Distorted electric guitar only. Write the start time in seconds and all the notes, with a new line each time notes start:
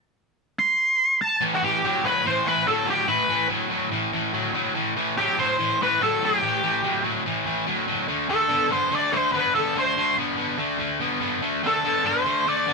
1.41 A2 E3
1.62 A2 E3
1.83 A2 F#3
2.03 A2 F#3
2.25 A2 E3
2.45 A2 E3
2.66 A2 F#3
2.85 A2 F#3
3.08 A2 E3
3.29 A2 E3
3.48 A2 F#3
3.69 A2 F#3
3.91 A2 E3
4.13 A2 E3
4.33 A2 F#3
4.54 A2 F#3
4.75 A2 E3
4.96 A2 E3
5.17 A2 F#3
5.37 A2 F#3
5.58 A2 E3
5.81 A2 E3
6.01 A2 F#3
6.21 A2 F#3
6.42 A2 E3
6.63 A2 E3
6.84 A2 F#3
7.04 A2 F#3
7.25 A2 E3
7.45 A2 E3
7.66 A2 F#3
7.87 A2 F#3
8.08 D3 A3
8.29 D3 A3
8.49 D3 B3
8.70 D3 B3
8.91 D3 A3
9.12 D3 A3
9.34 D3 B3
9.55 D3 B3
9.75 D3 A3
9.97 D3 A3
10.18 D3 B3
10.37 D3 B3
10.58 D3 A3
10.79 D3 A3
11.00 D3 B3
11.20 D3 B3
11.42 D3 A3
11.64 D3 A3
11.85 D3 B3
12.04 D3 B3
12.25 D3 A3
12.46 D3 A3
12.66 D3 B3